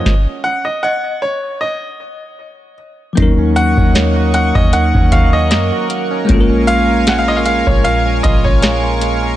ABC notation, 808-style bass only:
X:1
M:4/4
L:1/16
Q:"Swing 16ths" 1/4=77
K:Ebm
V:1 name="808-style bass" clef=bass
z16 | E,,3 E,,4 E,,2 E,,3 G,, z3 | B,,,6- B,,, B,,,3 B,,,6 |]